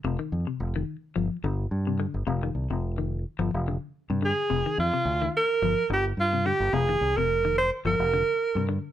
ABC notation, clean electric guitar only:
X:1
M:4/4
L:1/16
Q:"Swing 16ths" 1/4=108
K:Fdor
V:1 name="Clean electric guitar" clef=bass
C, E,2 C,2 E,2 z F,2 D,2 z C, D,2 | C, E,2 C,2 E,2 z F,2 D,2 z C, D,2 | C, E,2 C,2 E,2 z F,2 D,2 z C, D,2 | C, E,2 C,2 E,2 z F,2 D,2 z C, D,2 |]